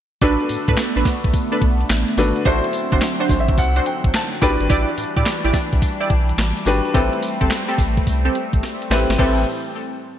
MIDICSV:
0, 0, Header, 1, 6, 480
1, 0, Start_track
1, 0, Tempo, 560748
1, 184, Time_signature, 4, 2, 24, 8
1, 8721, End_track
2, 0, Start_track
2, 0, Title_t, "Analog polysynth"
2, 0, Program_c, 0, 90
2, 186, Note_on_c, 0, 62, 102
2, 190, Note_on_c, 0, 69, 85
2, 191, Note_on_c, 0, 71, 106
2, 359, Note_off_c, 0, 62, 0
2, 361, Note_off_c, 0, 69, 0
2, 362, Note_off_c, 0, 71, 0
2, 583, Note_on_c, 0, 62, 81
2, 587, Note_on_c, 0, 69, 74
2, 588, Note_on_c, 0, 71, 94
2, 693, Note_off_c, 0, 62, 0
2, 695, Note_off_c, 0, 69, 0
2, 695, Note_off_c, 0, 71, 0
2, 823, Note_on_c, 0, 62, 77
2, 826, Note_on_c, 0, 69, 70
2, 828, Note_on_c, 0, 71, 87
2, 933, Note_off_c, 0, 62, 0
2, 935, Note_off_c, 0, 69, 0
2, 935, Note_off_c, 0, 71, 0
2, 1299, Note_on_c, 0, 62, 81
2, 1302, Note_on_c, 0, 69, 72
2, 1305, Note_on_c, 0, 71, 84
2, 1411, Note_off_c, 0, 62, 0
2, 1412, Note_off_c, 0, 69, 0
2, 1414, Note_off_c, 0, 71, 0
2, 2101, Note_on_c, 0, 62, 91
2, 2101, Note_on_c, 0, 66, 88
2, 2104, Note_on_c, 0, 72, 105
2, 2277, Note_off_c, 0, 62, 0
2, 2277, Note_off_c, 0, 66, 0
2, 2278, Note_off_c, 0, 72, 0
2, 2499, Note_on_c, 0, 62, 83
2, 2503, Note_on_c, 0, 66, 73
2, 2505, Note_on_c, 0, 72, 84
2, 2611, Note_off_c, 0, 62, 0
2, 2613, Note_off_c, 0, 66, 0
2, 2614, Note_off_c, 0, 72, 0
2, 2740, Note_on_c, 0, 62, 83
2, 2742, Note_on_c, 0, 66, 73
2, 2744, Note_on_c, 0, 72, 87
2, 2851, Note_off_c, 0, 62, 0
2, 2852, Note_off_c, 0, 66, 0
2, 2853, Note_off_c, 0, 72, 0
2, 3220, Note_on_c, 0, 62, 76
2, 3223, Note_on_c, 0, 66, 72
2, 3227, Note_on_c, 0, 72, 87
2, 3331, Note_off_c, 0, 62, 0
2, 3333, Note_off_c, 0, 66, 0
2, 3335, Note_off_c, 0, 72, 0
2, 3781, Note_on_c, 0, 64, 78
2, 3782, Note_on_c, 0, 67, 70
2, 3785, Note_on_c, 0, 74, 89
2, 3957, Note_off_c, 0, 64, 0
2, 3957, Note_off_c, 0, 67, 0
2, 3959, Note_off_c, 0, 74, 0
2, 4018, Note_on_c, 0, 64, 93
2, 4021, Note_on_c, 0, 67, 88
2, 4023, Note_on_c, 0, 74, 115
2, 4195, Note_off_c, 0, 64, 0
2, 4197, Note_off_c, 0, 67, 0
2, 4198, Note_off_c, 0, 74, 0
2, 4420, Note_on_c, 0, 64, 78
2, 4423, Note_on_c, 0, 67, 74
2, 4426, Note_on_c, 0, 74, 88
2, 4531, Note_off_c, 0, 64, 0
2, 4533, Note_off_c, 0, 67, 0
2, 4534, Note_off_c, 0, 74, 0
2, 4660, Note_on_c, 0, 64, 83
2, 4665, Note_on_c, 0, 67, 76
2, 4668, Note_on_c, 0, 74, 90
2, 4772, Note_off_c, 0, 64, 0
2, 4774, Note_off_c, 0, 67, 0
2, 4775, Note_off_c, 0, 74, 0
2, 5140, Note_on_c, 0, 64, 80
2, 5143, Note_on_c, 0, 67, 69
2, 5144, Note_on_c, 0, 74, 83
2, 5251, Note_off_c, 0, 64, 0
2, 5253, Note_off_c, 0, 67, 0
2, 5253, Note_off_c, 0, 74, 0
2, 5940, Note_on_c, 0, 60, 93
2, 5942, Note_on_c, 0, 67, 87
2, 5944, Note_on_c, 0, 69, 103
2, 6117, Note_off_c, 0, 60, 0
2, 6117, Note_off_c, 0, 67, 0
2, 6118, Note_off_c, 0, 69, 0
2, 6340, Note_on_c, 0, 60, 80
2, 6340, Note_on_c, 0, 67, 68
2, 6344, Note_on_c, 0, 69, 89
2, 6451, Note_off_c, 0, 60, 0
2, 6452, Note_off_c, 0, 67, 0
2, 6454, Note_off_c, 0, 69, 0
2, 6576, Note_on_c, 0, 60, 80
2, 6578, Note_on_c, 0, 67, 76
2, 6582, Note_on_c, 0, 69, 91
2, 6689, Note_off_c, 0, 60, 0
2, 6690, Note_off_c, 0, 67, 0
2, 6692, Note_off_c, 0, 69, 0
2, 7061, Note_on_c, 0, 60, 76
2, 7063, Note_on_c, 0, 67, 73
2, 7065, Note_on_c, 0, 69, 78
2, 7172, Note_off_c, 0, 60, 0
2, 7173, Note_off_c, 0, 67, 0
2, 7174, Note_off_c, 0, 69, 0
2, 7623, Note_on_c, 0, 60, 73
2, 7626, Note_on_c, 0, 67, 67
2, 7626, Note_on_c, 0, 69, 84
2, 7798, Note_off_c, 0, 60, 0
2, 7799, Note_off_c, 0, 67, 0
2, 7799, Note_off_c, 0, 69, 0
2, 7860, Note_on_c, 0, 60, 90
2, 7863, Note_on_c, 0, 67, 84
2, 7868, Note_on_c, 0, 69, 95
2, 8055, Note_off_c, 0, 60, 0
2, 8057, Note_off_c, 0, 67, 0
2, 8059, Note_off_c, 0, 69, 0
2, 8721, End_track
3, 0, Start_track
3, 0, Title_t, "Grand piano"
3, 0, Program_c, 1, 0
3, 185, Note_on_c, 1, 62, 94
3, 190, Note_on_c, 1, 66, 82
3, 191, Note_on_c, 1, 69, 84
3, 195, Note_on_c, 1, 71, 95
3, 344, Control_c, 1, 64, 127
3, 846, Note_off_c, 1, 62, 0
3, 848, Note_off_c, 1, 66, 0
3, 849, Note_off_c, 1, 69, 0
3, 850, Note_off_c, 1, 71, 0
3, 1864, Note_on_c, 1, 62, 92
3, 1868, Note_on_c, 1, 66, 82
3, 1871, Note_on_c, 1, 69, 83
3, 1872, Note_on_c, 1, 71, 93
3, 2049, Note_off_c, 1, 62, 0
3, 2051, Note_off_c, 1, 66, 0
3, 2052, Note_off_c, 1, 69, 0
3, 2053, Note_off_c, 1, 71, 0
3, 2106, Note_on_c, 1, 64, 95
3, 2109, Note_on_c, 1, 66, 83
3, 2111, Note_on_c, 1, 69, 80
3, 2113, Note_on_c, 1, 72, 97
3, 2116, Control_c, 1, 64, 0
3, 2259, Control_c, 1, 64, 127
3, 2766, Note_off_c, 1, 64, 0
3, 2768, Note_off_c, 1, 66, 0
3, 2768, Note_off_c, 1, 69, 0
3, 2770, Note_off_c, 1, 72, 0
3, 2826, Note_on_c, 1, 72, 71
3, 2899, Note_off_c, 1, 72, 0
3, 2911, Note_on_c, 1, 76, 74
3, 3056, Note_off_c, 1, 76, 0
3, 3068, Note_on_c, 1, 78, 84
3, 3289, Note_off_c, 1, 78, 0
3, 3311, Note_on_c, 1, 79, 73
3, 3531, Note_off_c, 1, 79, 0
3, 3546, Note_on_c, 1, 81, 75
3, 3768, Note_off_c, 1, 81, 0
3, 3780, Note_on_c, 1, 62, 95
3, 3784, Note_on_c, 1, 66, 86
3, 3785, Note_on_c, 1, 83, 77
3, 3786, Note_on_c, 1, 67, 91
3, 3790, Note_on_c, 1, 71, 108
3, 3796, Control_c, 1, 64, 0
3, 3961, Control_c, 1, 64, 127
3, 4008, Note_off_c, 1, 83, 0
3, 4566, Note_off_c, 1, 62, 0
3, 4568, Note_off_c, 1, 66, 0
3, 4569, Note_off_c, 1, 67, 0
3, 4571, Note_off_c, 1, 71, 0
3, 5701, Note_on_c, 1, 62, 91
3, 5705, Note_on_c, 1, 66, 79
3, 5707, Note_on_c, 1, 67, 83
3, 5711, Note_on_c, 1, 71, 105
3, 5888, Note_off_c, 1, 62, 0
3, 5890, Note_off_c, 1, 66, 0
3, 5890, Note_off_c, 1, 67, 0
3, 5893, Note_off_c, 1, 71, 0
3, 5941, Note_on_c, 1, 60, 93
3, 5945, Note_on_c, 1, 64, 80
3, 5949, Note_on_c, 1, 67, 78
3, 5952, Note_on_c, 1, 71, 91
3, 5956, Control_c, 1, 64, 0
3, 6085, Control_c, 1, 64, 127
3, 6604, Note_off_c, 1, 60, 0
3, 6606, Note_off_c, 1, 64, 0
3, 6608, Note_off_c, 1, 67, 0
3, 6609, Note_off_c, 1, 71, 0
3, 7627, Note_on_c, 1, 60, 89
3, 7631, Note_on_c, 1, 64, 78
3, 7633, Note_on_c, 1, 67, 82
3, 7637, Note_on_c, 1, 71, 96
3, 7810, Note_off_c, 1, 60, 0
3, 7813, Note_off_c, 1, 64, 0
3, 7814, Note_off_c, 1, 67, 0
3, 7816, Note_off_c, 1, 71, 0
3, 7867, Note_on_c, 1, 64, 77
3, 7867, Note_on_c, 1, 71, 91
3, 7869, Note_on_c, 1, 60, 85
3, 7870, Note_on_c, 1, 67, 81
3, 7874, Control_c, 1, 64, 0
3, 8089, Note_off_c, 1, 64, 0
3, 8089, Note_off_c, 1, 71, 0
3, 8090, Note_off_c, 1, 60, 0
3, 8090, Note_off_c, 1, 67, 0
3, 8721, End_track
4, 0, Start_track
4, 0, Title_t, "Analog synth pad"
4, 0, Program_c, 2, 89
4, 188, Note_on_c, 2, 57, 68
4, 188, Note_on_c, 2, 59, 84
4, 189, Note_on_c, 2, 50, 74
4, 2086, Note_off_c, 2, 59, 0
4, 2087, Note_off_c, 2, 57, 0
4, 2100, Note_on_c, 2, 54, 71
4, 2101, Note_on_c, 2, 60, 86
4, 3752, Note_off_c, 2, 50, 0
4, 3765, Note_off_c, 2, 54, 0
4, 3765, Note_off_c, 2, 60, 0
4, 3786, Note_on_c, 2, 62, 93
4, 3787, Note_on_c, 2, 52, 82
4, 3789, Note_on_c, 2, 55, 76
4, 5923, Note_off_c, 2, 62, 0
4, 5924, Note_off_c, 2, 52, 0
4, 5947, Note_on_c, 2, 57, 68
4, 5947, Note_on_c, 2, 60, 85
4, 7832, Note_off_c, 2, 55, 0
4, 7846, Note_off_c, 2, 57, 0
4, 7846, Note_off_c, 2, 60, 0
4, 7869, Note_on_c, 2, 45, 76
4, 7870, Note_on_c, 2, 52, 67
4, 7870, Note_on_c, 2, 55, 67
4, 7870, Note_on_c, 2, 60, 80
4, 8090, Note_off_c, 2, 45, 0
4, 8090, Note_off_c, 2, 52, 0
4, 8090, Note_off_c, 2, 55, 0
4, 8090, Note_off_c, 2, 60, 0
4, 8721, End_track
5, 0, Start_track
5, 0, Title_t, "Analog synth bass"
5, 0, Program_c, 3, 38
5, 187, Note_on_c, 3, 33, 103
5, 313, Note_off_c, 3, 33, 0
5, 427, Note_on_c, 3, 45, 52
5, 490, Note_off_c, 3, 45, 0
5, 583, Note_on_c, 3, 45, 115
5, 648, Note_off_c, 3, 45, 0
5, 822, Note_on_c, 3, 33, 89
5, 887, Note_off_c, 3, 33, 0
5, 1064, Note_on_c, 3, 35, 83
5, 1128, Note_off_c, 3, 35, 0
5, 1384, Note_on_c, 3, 35, 93
5, 1576, Note_off_c, 3, 35, 0
5, 1623, Note_on_c, 3, 33, 89
5, 1751, Note_off_c, 3, 33, 0
5, 1861, Note_on_c, 3, 32, 102
5, 1990, Note_off_c, 3, 32, 0
5, 2103, Note_on_c, 3, 33, 113
5, 2231, Note_off_c, 3, 33, 0
5, 2500, Note_on_c, 3, 30, 96
5, 2566, Note_off_c, 3, 30, 0
5, 2821, Note_on_c, 3, 33, 89
5, 3062, Note_on_c, 3, 36, 109
5, 3075, Note_off_c, 3, 33, 0
5, 3255, Note_off_c, 3, 36, 0
5, 3460, Note_on_c, 3, 33, 87
5, 3526, Note_off_c, 3, 33, 0
5, 3782, Note_on_c, 3, 33, 109
5, 3911, Note_off_c, 3, 33, 0
5, 3938, Note_on_c, 3, 32, 96
5, 4005, Note_off_c, 3, 32, 0
5, 4024, Note_on_c, 3, 33, 113
5, 4152, Note_off_c, 3, 33, 0
5, 4260, Note_on_c, 3, 45, 49
5, 4325, Note_off_c, 3, 45, 0
5, 4424, Note_on_c, 3, 45, 106
5, 4488, Note_off_c, 3, 45, 0
5, 4661, Note_on_c, 3, 33, 100
5, 4726, Note_off_c, 3, 33, 0
5, 4903, Note_on_c, 3, 35, 94
5, 4967, Note_off_c, 3, 35, 0
5, 5222, Note_on_c, 3, 35, 89
5, 5415, Note_off_c, 3, 35, 0
5, 5459, Note_on_c, 3, 33, 99
5, 5589, Note_off_c, 3, 33, 0
5, 5700, Note_on_c, 3, 32, 92
5, 5829, Note_off_c, 3, 32, 0
5, 5944, Note_on_c, 3, 33, 104
5, 6072, Note_off_c, 3, 33, 0
5, 6344, Note_on_c, 3, 31, 92
5, 6408, Note_off_c, 3, 31, 0
5, 6663, Note_on_c, 3, 33, 95
5, 6855, Note_off_c, 3, 33, 0
5, 6905, Note_on_c, 3, 36, 100
5, 7096, Note_off_c, 3, 36, 0
5, 7303, Note_on_c, 3, 33, 94
5, 7368, Note_off_c, 3, 33, 0
5, 7621, Note_on_c, 3, 33, 103
5, 7750, Note_off_c, 3, 33, 0
5, 7782, Note_on_c, 3, 32, 86
5, 7847, Note_off_c, 3, 32, 0
5, 7867, Note_on_c, 3, 33, 105
5, 8089, Note_off_c, 3, 33, 0
5, 8721, End_track
6, 0, Start_track
6, 0, Title_t, "Drums"
6, 184, Note_on_c, 9, 42, 75
6, 184, Note_on_c, 9, 54, 72
6, 185, Note_on_c, 9, 36, 116
6, 270, Note_off_c, 9, 42, 0
6, 270, Note_off_c, 9, 54, 0
6, 271, Note_off_c, 9, 36, 0
6, 341, Note_on_c, 9, 42, 47
6, 422, Note_off_c, 9, 42, 0
6, 422, Note_on_c, 9, 42, 82
6, 422, Note_on_c, 9, 54, 69
6, 507, Note_off_c, 9, 54, 0
6, 508, Note_off_c, 9, 42, 0
6, 581, Note_on_c, 9, 42, 55
6, 585, Note_on_c, 9, 36, 97
6, 661, Note_on_c, 9, 54, 83
6, 662, Note_on_c, 9, 38, 103
6, 664, Note_off_c, 9, 42, 0
6, 664, Note_on_c, 9, 42, 63
6, 665, Note_on_c, 9, 39, 82
6, 670, Note_off_c, 9, 36, 0
6, 747, Note_off_c, 9, 38, 0
6, 747, Note_off_c, 9, 54, 0
6, 749, Note_off_c, 9, 42, 0
6, 751, Note_off_c, 9, 39, 0
6, 823, Note_on_c, 9, 42, 50
6, 901, Note_on_c, 9, 36, 95
6, 903, Note_on_c, 9, 38, 65
6, 903, Note_on_c, 9, 54, 70
6, 906, Note_on_c, 9, 46, 73
6, 909, Note_off_c, 9, 42, 0
6, 987, Note_off_c, 9, 36, 0
6, 988, Note_off_c, 9, 38, 0
6, 988, Note_off_c, 9, 54, 0
6, 992, Note_off_c, 9, 46, 0
6, 1064, Note_on_c, 9, 36, 92
6, 1064, Note_on_c, 9, 42, 44
6, 1144, Note_off_c, 9, 36, 0
6, 1144, Note_off_c, 9, 42, 0
6, 1144, Note_on_c, 9, 36, 95
6, 1144, Note_on_c, 9, 42, 73
6, 1144, Note_on_c, 9, 54, 70
6, 1230, Note_off_c, 9, 36, 0
6, 1230, Note_off_c, 9, 42, 0
6, 1230, Note_off_c, 9, 54, 0
6, 1303, Note_on_c, 9, 42, 52
6, 1382, Note_on_c, 9, 36, 98
6, 1385, Note_off_c, 9, 42, 0
6, 1385, Note_on_c, 9, 42, 77
6, 1468, Note_off_c, 9, 36, 0
6, 1471, Note_off_c, 9, 42, 0
6, 1546, Note_on_c, 9, 42, 52
6, 1624, Note_off_c, 9, 42, 0
6, 1624, Note_on_c, 9, 42, 71
6, 1625, Note_on_c, 9, 38, 124
6, 1625, Note_on_c, 9, 54, 92
6, 1629, Note_on_c, 9, 39, 98
6, 1710, Note_off_c, 9, 42, 0
6, 1710, Note_off_c, 9, 54, 0
6, 1711, Note_off_c, 9, 38, 0
6, 1715, Note_off_c, 9, 39, 0
6, 1783, Note_on_c, 9, 42, 58
6, 1860, Note_on_c, 9, 54, 75
6, 1863, Note_on_c, 9, 46, 83
6, 1869, Note_off_c, 9, 42, 0
6, 1946, Note_off_c, 9, 54, 0
6, 1949, Note_off_c, 9, 46, 0
6, 2020, Note_on_c, 9, 42, 46
6, 2097, Note_off_c, 9, 42, 0
6, 2097, Note_on_c, 9, 42, 75
6, 2098, Note_on_c, 9, 54, 69
6, 2102, Note_on_c, 9, 36, 118
6, 2183, Note_off_c, 9, 42, 0
6, 2183, Note_off_c, 9, 54, 0
6, 2187, Note_off_c, 9, 36, 0
6, 2262, Note_on_c, 9, 42, 45
6, 2337, Note_off_c, 9, 42, 0
6, 2337, Note_on_c, 9, 42, 83
6, 2337, Note_on_c, 9, 54, 65
6, 2423, Note_off_c, 9, 42, 0
6, 2423, Note_off_c, 9, 54, 0
6, 2499, Note_on_c, 9, 42, 53
6, 2502, Note_on_c, 9, 36, 98
6, 2580, Note_on_c, 9, 38, 107
6, 2580, Note_on_c, 9, 54, 92
6, 2583, Note_off_c, 9, 42, 0
6, 2583, Note_on_c, 9, 42, 63
6, 2584, Note_on_c, 9, 39, 79
6, 2588, Note_off_c, 9, 36, 0
6, 2666, Note_off_c, 9, 38, 0
6, 2666, Note_off_c, 9, 54, 0
6, 2668, Note_off_c, 9, 42, 0
6, 2670, Note_off_c, 9, 39, 0
6, 2741, Note_on_c, 9, 42, 48
6, 2820, Note_on_c, 9, 36, 104
6, 2821, Note_on_c, 9, 54, 70
6, 2824, Note_on_c, 9, 46, 74
6, 2827, Note_off_c, 9, 42, 0
6, 2905, Note_off_c, 9, 36, 0
6, 2907, Note_off_c, 9, 54, 0
6, 2910, Note_off_c, 9, 46, 0
6, 2982, Note_on_c, 9, 42, 42
6, 2983, Note_on_c, 9, 36, 99
6, 3062, Note_off_c, 9, 36, 0
6, 3062, Note_off_c, 9, 42, 0
6, 3062, Note_on_c, 9, 36, 88
6, 3062, Note_on_c, 9, 42, 76
6, 3062, Note_on_c, 9, 54, 72
6, 3147, Note_off_c, 9, 42, 0
6, 3147, Note_off_c, 9, 54, 0
6, 3148, Note_off_c, 9, 36, 0
6, 3220, Note_on_c, 9, 42, 52
6, 3305, Note_off_c, 9, 42, 0
6, 3305, Note_on_c, 9, 42, 78
6, 3390, Note_off_c, 9, 42, 0
6, 3460, Note_on_c, 9, 36, 104
6, 3462, Note_on_c, 9, 42, 49
6, 3544, Note_off_c, 9, 42, 0
6, 3544, Note_on_c, 9, 42, 76
6, 3545, Note_on_c, 9, 54, 91
6, 3546, Note_off_c, 9, 36, 0
6, 3546, Note_on_c, 9, 38, 120
6, 3550, Note_on_c, 9, 39, 99
6, 3630, Note_off_c, 9, 42, 0
6, 3631, Note_off_c, 9, 38, 0
6, 3631, Note_off_c, 9, 54, 0
6, 3635, Note_off_c, 9, 39, 0
6, 3703, Note_on_c, 9, 42, 53
6, 3781, Note_on_c, 9, 54, 69
6, 3782, Note_on_c, 9, 36, 101
6, 3785, Note_on_c, 9, 46, 80
6, 3788, Note_off_c, 9, 42, 0
6, 3867, Note_off_c, 9, 54, 0
6, 3868, Note_off_c, 9, 36, 0
6, 3870, Note_off_c, 9, 46, 0
6, 3942, Note_on_c, 9, 42, 47
6, 4023, Note_on_c, 9, 36, 124
6, 4024, Note_off_c, 9, 42, 0
6, 4024, Note_on_c, 9, 42, 78
6, 4024, Note_on_c, 9, 54, 73
6, 4108, Note_off_c, 9, 36, 0
6, 4109, Note_off_c, 9, 42, 0
6, 4110, Note_off_c, 9, 54, 0
6, 4183, Note_on_c, 9, 42, 49
6, 4260, Note_off_c, 9, 42, 0
6, 4260, Note_on_c, 9, 42, 85
6, 4260, Note_on_c, 9, 54, 70
6, 4346, Note_off_c, 9, 42, 0
6, 4346, Note_off_c, 9, 54, 0
6, 4421, Note_on_c, 9, 42, 58
6, 4423, Note_on_c, 9, 36, 102
6, 4502, Note_on_c, 9, 38, 103
6, 4502, Note_on_c, 9, 54, 90
6, 4505, Note_off_c, 9, 42, 0
6, 4505, Note_on_c, 9, 42, 66
6, 4506, Note_on_c, 9, 39, 82
6, 4508, Note_off_c, 9, 36, 0
6, 4588, Note_off_c, 9, 38, 0
6, 4588, Note_off_c, 9, 54, 0
6, 4590, Note_off_c, 9, 42, 0
6, 4592, Note_off_c, 9, 39, 0
6, 4661, Note_on_c, 9, 42, 54
6, 4739, Note_on_c, 9, 36, 102
6, 4739, Note_on_c, 9, 38, 67
6, 4739, Note_on_c, 9, 54, 72
6, 4743, Note_on_c, 9, 46, 78
6, 4747, Note_off_c, 9, 42, 0
6, 4825, Note_off_c, 9, 36, 0
6, 4825, Note_off_c, 9, 38, 0
6, 4825, Note_off_c, 9, 54, 0
6, 4828, Note_off_c, 9, 46, 0
6, 4901, Note_on_c, 9, 42, 46
6, 4902, Note_on_c, 9, 36, 98
6, 4982, Note_off_c, 9, 36, 0
6, 4982, Note_off_c, 9, 42, 0
6, 4982, Note_on_c, 9, 36, 100
6, 4982, Note_on_c, 9, 42, 77
6, 4983, Note_on_c, 9, 54, 73
6, 5068, Note_off_c, 9, 36, 0
6, 5068, Note_off_c, 9, 42, 0
6, 5068, Note_off_c, 9, 54, 0
6, 5140, Note_on_c, 9, 42, 52
6, 5222, Note_on_c, 9, 36, 103
6, 5223, Note_off_c, 9, 42, 0
6, 5223, Note_on_c, 9, 42, 74
6, 5307, Note_off_c, 9, 36, 0
6, 5309, Note_off_c, 9, 42, 0
6, 5386, Note_on_c, 9, 42, 53
6, 5465, Note_off_c, 9, 42, 0
6, 5465, Note_on_c, 9, 42, 69
6, 5466, Note_on_c, 9, 54, 91
6, 5467, Note_on_c, 9, 38, 127
6, 5471, Note_on_c, 9, 39, 91
6, 5551, Note_off_c, 9, 42, 0
6, 5552, Note_off_c, 9, 38, 0
6, 5552, Note_off_c, 9, 54, 0
6, 5556, Note_off_c, 9, 39, 0
6, 5625, Note_on_c, 9, 42, 58
6, 5702, Note_on_c, 9, 54, 69
6, 5706, Note_on_c, 9, 46, 82
6, 5711, Note_off_c, 9, 42, 0
6, 5788, Note_off_c, 9, 54, 0
6, 5791, Note_off_c, 9, 46, 0
6, 5865, Note_on_c, 9, 42, 45
6, 5945, Note_on_c, 9, 36, 126
6, 5947, Note_off_c, 9, 42, 0
6, 5947, Note_on_c, 9, 42, 75
6, 5947, Note_on_c, 9, 54, 73
6, 6030, Note_off_c, 9, 36, 0
6, 6032, Note_off_c, 9, 42, 0
6, 6033, Note_off_c, 9, 54, 0
6, 6104, Note_on_c, 9, 42, 45
6, 6184, Note_on_c, 9, 54, 65
6, 6185, Note_off_c, 9, 42, 0
6, 6185, Note_on_c, 9, 42, 91
6, 6270, Note_off_c, 9, 42, 0
6, 6270, Note_off_c, 9, 54, 0
6, 6344, Note_on_c, 9, 36, 100
6, 6344, Note_on_c, 9, 42, 53
6, 6424, Note_on_c, 9, 38, 117
6, 6424, Note_on_c, 9, 54, 85
6, 6427, Note_off_c, 9, 42, 0
6, 6427, Note_on_c, 9, 42, 58
6, 6428, Note_on_c, 9, 39, 88
6, 6430, Note_off_c, 9, 36, 0
6, 6510, Note_off_c, 9, 38, 0
6, 6510, Note_off_c, 9, 54, 0
6, 6512, Note_off_c, 9, 42, 0
6, 6514, Note_off_c, 9, 39, 0
6, 6586, Note_on_c, 9, 42, 48
6, 6662, Note_on_c, 9, 36, 107
6, 6664, Note_on_c, 9, 54, 69
6, 6667, Note_on_c, 9, 46, 70
6, 6671, Note_off_c, 9, 42, 0
6, 6747, Note_off_c, 9, 36, 0
6, 6749, Note_off_c, 9, 54, 0
6, 6752, Note_off_c, 9, 46, 0
6, 6825, Note_on_c, 9, 36, 96
6, 6827, Note_on_c, 9, 42, 47
6, 6906, Note_off_c, 9, 36, 0
6, 6906, Note_on_c, 9, 36, 91
6, 6908, Note_off_c, 9, 42, 0
6, 6908, Note_on_c, 9, 42, 72
6, 6908, Note_on_c, 9, 54, 69
6, 6991, Note_off_c, 9, 36, 0
6, 6994, Note_off_c, 9, 42, 0
6, 6994, Note_off_c, 9, 54, 0
6, 7067, Note_on_c, 9, 42, 54
6, 7149, Note_off_c, 9, 42, 0
6, 7149, Note_on_c, 9, 42, 72
6, 7235, Note_off_c, 9, 42, 0
6, 7304, Note_on_c, 9, 36, 96
6, 7307, Note_on_c, 9, 42, 52
6, 7389, Note_off_c, 9, 36, 0
6, 7390, Note_off_c, 9, 42, 0
6, 7390, Note_on_c, 9, 38, 62
6, 7390, Note_on_c, 9, 42, 69
6, 7475, Note_off_c, 9, 38, 0
6, 7476, Note_off_c, 9, 42, 0
6, 7549, Note_on_c, 9, 42, 54
6, 7629, Note_on_c, 9, 38, 102
6, 7630, Note_on_c, 9, 46, 83
6, 7635, Note_off_c, 9, 42, 0
6, 7714, Note_off_c, 9, 38, 0
6, 7716, Note_off_c, 9, 46, 0
6, 7789, Note_on_c, 9, 42, 47
6, 7791, Note_on_c, 9, 38, 94
6, 7867, Note_on_c, 9, 36, 112
6, 7868, Note_on_c, 9, 49, 90
6, 7874, Note_off_c, 9, 42, 0
6, 7877, Note_off_c, 9, 38, 0
6, 7952, Note_off_c, 9, 36, 0
6, 7954, Note_off_c, 9, 49, 0
6, 8721, End_track
0, 0, End_of_file